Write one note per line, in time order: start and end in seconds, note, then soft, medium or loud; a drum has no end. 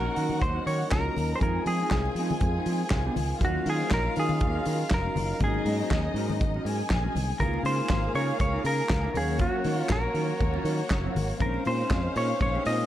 0.00 7.37 D#3 medium
0.00 0.88 F#3 medium
0.00 1.40 F#3 medium
0.00 0.88 A#3 medium
0.00 1.40 A#3 medium
0.00 0.89 C#4 medium
0.00 1.40 C#4 medium
0.00 1.40 D#4 medium
0.00 0.88 F#4 medium
0.00 0.89 F#4 medium
0.00 0.42 A#4 medium
0.00 0.88 F#5 medium
0.15 0.43 D#3 medium
0.15 0.34 C#4 medium
0.15 0.28 F#4 medium
0.15 0.27 A#4 medium
0.15 open hi-hat medium
0.28 muted clean electric guitar stroke soft
0.28 low conga medium
0.41 0.57 D#2 medium
0.41 0.67 C5 loud
0.41 muted clean electric guitar stroke soft
0.41 kick loud
0.41 closed hi-hat medium
0.41 high conga medium
0.55 0.65 C#4 medium
0.55 0.65 F#4 medium
0.55 0.65 A#4 medium
0.66 0.82 D#3 medium
0.66 0.80 C#4 medium
0.66 0.81 F#4 medium
0.66 0.80 A#4 medium
0.66 0.92 C#5 loud
0.66 open hi-hat medium
0.81 muted clean electric guitar stroke soft
0.91 1.08 C#2 medium
0.91 1.41 F#3 soft
0.91 1.41 A#3 soft
0.91 1.41 C#4 soft
0.91 1.41 F4 medium
0.91 1.40 A#4 medium
0.91 1.35 A#4 medium
0.91 1.40 A#5 medium
0.91 kick loud
0.91 snare loud
0.91 clap medium
0.91 closed hi-hat medium
1.05 1.15 C#4 medium
1.05 1.16 F#4 medium
1.05 1.16 A#4 medium
1.05 muted conga soft
1.05 high conga soft
1.16 1.32 D#2 medium
1.16 open hi-hat medium
1.16 low conga medium
1.30 muted clean electric guitar stroke soft
1.35 3.36 G#3 medium
1.35 1.41 C5 medium
1.40 1.57 F2 medium
1.40 3.40 F3 medium
1.40 3.39 G#3 medium
1.40 3.37 C4 medium
1.40 1.59 C4 medium
1.40 3.39 C4 medium
1.40 3.37 D#4 medium
1.40 1.60 D#4 medium
1.40 3.38 F4 medium
1.40 3.40 F4 medium
1.40 3.37 G#4 medium
1.40 1.60 G#4 medium
1.40 1.67 A#4 medium
1.40 3.37 G#5 medium
1.40 kick loud
1.40 closed hi-hat medium
1.40 muted conga soft
1.40 low conga medium
1.66 1.82 F3 medium
1.66 1.80 C4 medium
1.66 1.80 D#4 medium
1.66 3.13 G#4 medium
1.66 1.81 G#4 medium
1.66 open hi-hat medium
1.66 high conga medium
1.81 1.93 C4 soft
1.81 1.93 D#4 medium
1.81 1.93 A#4 medium
1.90 2.07 C2 loud
1.90 kick loud
1.90 snare loud
1.90 clap medium
1.90 closed hi-hat medium
1.90 muted conga soft
1.90 high conga medium
2.05 muted clean electric guitar stroke soft
2.05 muted conga soft
2.15 2.31 F3 medium
2.15 2.35 C4 medium
2.15 open hi-hat medium
2.19 2.32 D#4 medium
2.19 2.31 G#4 medium
2.31 muted clean electric guitar stroke medium
2.31 low conga medium
2.41 2.57 F2 medium
2.41 kick loud
2.41 closed hi-hat medium
2.41 muted conga soft
2.41 high conga medium
2.57 2.68 C4 medium
2.57 2.68 D#4 medium
2.57 2.69 G#4 medium
2.66 2.82 F3 loud
2.66 2.82 C4 medium
2.66 2.82 D#4 medium
2.66 open hi-hat medium
2.71 2.81 G#4 medium
2.83 muted clean electric guitar stroke soft
2.90 3.08 C2 medium
2.90 kick loud
2.90 snare loud
2.90 clap medium
2.90 closed hi-hat medium
2.90 muted conga soft
3.05 3.17 C4 medium
3.05 3.18 D#4 medium
3.05 3.18 G#4 medium
3.05 muted conga soft
3.05 high conga soft
3.16 3.32 C#2 medium
3.16 muted clean electric guitar stroke soft
3.16 open hi-hat medium
3.16 low conga medium
3.31 muted clean electric guitar stroke medium
3.39 3.57 D#2 loud
3.39 5.38 F#3 medium
3.39 5.36 F#3 medium
3.39 7.36 A#3 medium
3.39 5.37 A#3 medium
3.39 7.36 C#4 medium
3.39 5.37 C#4 medium
3.39 3.59 C#4 loud
3.39 7.36 D#4 medium
3.39 3.48 D#4 soft
3.39 5.37 F4 medium
3.39 5.36 F5 medium
3.39 kick loud
3.39 closed hi-hat medium
3.39 muted conga soft
3.39 low conga medium
3.43 3.60 F#4 loud
3.43 3.68 F#4 medium
3.43 3.60 A#4 loud
3.49 5.41 F4 medium
3.65 3.82 D#3 loud
3.65 3.80 C#4 medium
3.65 3.80 F#4 medium
3.65 3.80 A#4 medium
3.65 open hi-hat medium
3.65 high conga medium
3.70 3.93 G#4 loud
3.80 3.91 C#4 medium
3.80 3.91 F#4 medium
3.80 3.92 C5 medium
3.90 4.07 A#1 loud
3.90 4.18 A#4 loud
3.90 kick loud
3.90 snare loud
3.90 clap medium
3.90 closed hi-hat medium
3.90 high conga medium
4.05 muted clean electric guitar stroke soft
4.16 4.43 D#3 medium
4.16 4.34 C#4 medium
4.16 4.29 F#4 medium
4.16 4.94 G#4 medium
4.16 4.28 A#4 medium
4.16 open hi-hat medium
4.29 muted clean electric guitar stroke soft
4.29 low conga medium
4.41 4.57 D#2 medium
4.41 kick loud
4.41 closed hi-hat medium
4.41 high conga medium
4.55 4.66 C#4 medium
4.55 4.67 F#4 medium
4.55 4.68 A#4 medium
4.65 4.82 D#3 medium
4.65 4.81 C#4 medium
4.65 4.79 F#4 medium
4.65 4.79 A#4 medium
4.65 open hi-hat medium
4.80 muted clean electric guitar stroke soft
4.90 5.07 F1 loud
4.90 5.39 A#4 loud
4.90 kick loud
4.90 snare loud
4.90 clap medium
4.90 closed hi-hat medium
4.90 muted conga soft
5.05 5.17 C#4 medium
5.05 5.18 F#4 medium
5.05 5.17 A#4 medium
5.05 high conga soft
5.16 5.32 F#1 medium
5.16 muted clean electric guitar stroke soft
5.16 open hi-hat medium
5.16 low conga medium
5.32 muted clean electric guitar stroke soft
5.39 5.57 G#1 loud
5.39 7.36 F#3 medium
5.39 7.38 G#3 medium
5.39 7.36 A#3 medium
5.39 7.37 C#4 medium
5.39 6.63 D#4 medium
5.39 7.37 D#4 medium
5.39 6.63 D#5 medium
5.39 kick loud
5.39 closed hi-hat medium
5.39 muted conga soft
5.39 low conga medium
5.44 5.60 C#4 medium
5.44 5.61 F#4 medium
5.44 6.88 G#4 medium
5.44 5.61 A#4 medium
5.54 muted conga soft
5.65 5.81 G#2 loud
5.65 5.81 C#4 medium
5.65 open hi-hat medium
5.65 high conga medium
5.70 5.81 F#4 medium
5.70 5.81 A#4 medium
5.82 5.92 C#4 medium
5.82 5.92 F#4 medium
5.82 5.93 C5 medium
5.91 6.07 D#2 loud
5.91 kick loud
5.91 snare loud
5.91 clap medium
5.91 closed hi-hat medium
5.91 muted conga soft
5.91 high conga medium
6.04 muted clean electric guitar stroke soft
6.04 muted conga soft
6.14 6.43 G#2 loud
6.14 6.34 C#4 medium
6.14 6.30 F#4 medium
6.14 6.30 A#4 medium
6.14 open hi-hat medium
6.30 muted clean electric guitar stroke soft
6.30 low conga medium
6.41 6.57 G#1 medium
6.41 muted clean electric guitar stroke soft
6.41 kick loud
6.41 closed hi-hat medium
6.41 muted conga soft
6.41 high conga medium
6.54 6.66 C#4 medium
6.54 6.66 F#4 medium
6.54 6.67 A#4 medium
6.54 muted conga soft
6.65 6.81 G#2 medium
6.65 6.81 C#4 medium
6.65 6.80 F#4 medium
6.65 7.38 G#4 medium
6.65 6.79 A#4 medium
6.65 7.39 G#5 medium
6.65 open hi-hat medium
6.80 muted clean electric guitar stroke soft
6.90 7.07 A#1 medium
6.90 kick loud
6.90 snare loud
6.90 clap medium
6.90 closed hi-hat medium
7.04 7.15 C#4 medium
7.04 7.15 F#4 medium
7.04 7.16 A#4 medium
7.04 high conga soft
7.15 7.31 C2 medium
7.15 muted clean electric guitar stroke soft
7.15 open hi-hat medium
7.15 low conga medium
7.29 muted clean electric guitar stroke soft
7.39 7.57 C#2 medium
7.39 9.11 G#3 medium
7.39 9.12 A#3 medium
7.39 7.58 D#4 loud
7.39 9.12 D#4 soft
7.39 7.47 E4 soft
7.39 7.58 F4 medium
7.39 9.12 G#4 medium
7.39 7.64 A#4 medium
7.39 7.59 A#4 medium
7.39 9.12 F5 medium
7.39 kick loud
7.39 closed hi-hat medium
7.39 low conga medium
7.48 9.16 F4 medium
7.54 muted conga soft
7.63 7.80 C#3 medium
7.63 7.79 D#4 medium
7.63 7.78 F4 medium
7.63 8.15 C5 loud
7.63 open hi-hat medium
7.63 high conga medium
7.67 7.79 A#4 medium
7.79 7.90 D#4 medium
7.79 7.91 F4 medium
7.79 7.92 C5 medium
7.89 8.06 G#1 medium
7.89 muted clean electric guitar stroke soft
7.89 kick loud
7.89 snare loud
7.89 clap medium
7.89 closed hi-hat medium
7.89 muted conga soft
7.89 high conga medium
8.04 muted clean electric guitar stroke soft
8.04 muted conga soft
8.14 8.31 C#3 medium
8.14 8.34 D#4 medium
8.14 8.29 F4 medium
8.14 8.28 A#4 medium
8.14 8.40 C#5 loud
8.14 open hi-hat medium
8.30 muted clean electric guitar stroke soft
8.40 8.56 C#2 medium
8.40 8.66 C#5 loud
8.40 kick loud
8.40 closed hi-hat medium
8.40 muted conga soft
8.40 high conga medium
8.53 8.65 D#4 medium
8.53 8.66 F4 medium
8.53 8.66 A#4 medium
8.64 8.81 C#3 medium
8.64 8.80 D#4 medium
8.64 8.78 F4 medium
8.64 9.17 A#4 loud
8.64 8.77 A#4 medium
8.64 open hi-hat medium
8.78 muted clean electric guitar stroke soft
8.89 9.07 C#2 loud
8.89 kick loud
8.89 snare loud
8.89 clap medium
8.89 closed hi-hat medium
8.89 muted conga soft
9.03 9.15 D#4 medium
9.03 9.15 F4 medium
9.03 9.23 A#4 medium
9.03 muted conga soft
9.14 9.46 D#2 medium
9.14 11.11 F#3 medium
9.14 11.36 A#3 medium
9.14 11.11 A#3 medium
9.14 11.12 C#4 medium
9.14 11.36 F#4 medium
9.14 9.41 G#4 medium
9.14 11.35 C#5 medium
9.14 11.12 F5 medium
9.14 muted clean electric guitar stroke soft
9.14 open hi-hat medium
9.14 low conga medium
9.29 muted clean electric guitar stroke soft
9.39 9.58 F#3 medium
9.39 9.58 C#4 medium
9.39 9.59 F4 medium
9.39 9.79 F#4 medium
9.39 kick loud
9.39 closed hi-hat medium
9.39 low conga medium
9.64 9.81 D#3 medium
9.64 9.78 F#3 medium
9.64 9.77 C#4 medium
9.64 9.77 F4 medium
9.64 open hi-hat medium
9.64 high conga medium
9.78 9.89 F#3 medium
9.78 9.89 C#4 soft
9.78 9.92 F4 medium
9.78 9.91 F#4 medium
9.89 10.06 A#1 loud
9.89 11.12 A#4 medium
9.89 muted clean electric guitar stroke soft
9.89 kick loud
9.89 snare loud
9.89 clap medium
9.89 closed hi-hat medium
9.89 muted conga soft
9.89 high conga medium
10.14 10.31 D#3 medium
10.14 10.33 F#3 medium
10.14 10.29 C#4 medium
10.14 10.28 F4 medium
10.14 open hi-hat medium
10.29 muted clean electric guitar stroke soft
10.40 10.57 D#2 medium
10.40 muted clean electric guitar stroke soft
10.40 kick loud
10.40 closed hi-hat medium
10.40 muted conga soft
10.40 high conga medium
10.54 10.64 F#3 medium
10.54 10.65 C#4 medium
10.54 10.65 F4 loud
10.54 muted conga soft
10.64 10.81 D#3 loud
10.64 10.80 F#3 medium
10.64 10.78 C#4 medium
10.64 10.78 F4 medium
10.64 open hi-hat medium
10.79 muted clean electric guitar stroke soft
10.90 11.07 F#1 loud
10.90 kick loud
10.90 snare loud
10.90 clap medium
10.90 closed hi-hat medium
11.04 11.14 F#3 medium
11.04 11.15 C#4 medium
11.04 11.15 F4 medium
11.15 11.31 G#1 medium
11.15 muted clean electric guitar stroke soft
11.15 open hi-hat medium
11.15 low conga medium
11.29 muted clean electric guitar stroke medium
11.39 11.57 A#1 loud
11.39 12.86 C#3 medium
11.39 12.62 G#3 medium
11.39 12.86 G#3 medium
11.39 12.86 A#3 medium
11.39 12.62 C4 medium
11.39 12.86 C#4 medium
11.39 12.63 C#4 medium
11.39 11.59 C#4 medium
11.39 12.86 D#4 medium
11.39 11.59 D#4 medium
11.39 12.64 D#4 medium
11.39 11.59 G#4 medium
11.39 11.67 A#4 medium
11.39 12.86 C5 medium
11.39 12.86 F5 medium
11.39 kick loud
11.39 closed hi-hat medium
11.39 muted conga soft
11.39 low conga medium
11.54 muted conga soft
11.65 11.82 A#2 loud
11.65 11.80 C#4 medium
11.65 11.80 D#4 medium
11.65 11.80 G#4 medium
11.65 12.13 C5 loud
11.65 open hi-hat medium
11.65 high conga medium
11.80 11.90 C#4 medium
11.80 11.91 D#4 medium
11.80 11.92 A#4 medium
11.90 12.07 F2 loud
11.90 kick loud
11.90 snare loud
11.90 clap medium
11.90 closed hi-hat medium
11.90 high conga medium
12.04 muted clean electric guitar stroke soft
12.16 12.32 A#2 loud
12.16 12.34 C#4 medium
12.16 12.30 D#4 medium
12.16 12.29 G#4 medium
12.16 12.40 C#5 loud
12.16 open hi-hat medium
12.31 muted clean electric guitar stroke soft
12.41 12.57 A#1 medium
12.41 12.66 C#5 loud
12.41 muted clean electric guitar stroke soft
12.41 kick loud
12.41 closed hi-hat medium
12.41 muted conga soft
12.41 high conga medium
12.55 12.65 C#4 medium
12.55 12.66 D#4 medium
12.55 12.66 G#4 medium
12.55 muted conga soft
12.65 12.82 A#2 medium
12.65 12.86 G#3 medium
12.65 12.86 C4 soft
12.65 12.80 C#4 medium
12.65 12.86 C#4 soft
12.65 12.80 D#4 medium
12.65 12.86 D#4 medium
12.65 12.79 G#4 medium
12.65 12.86 D#5 loud
12.65 open hi-hat medium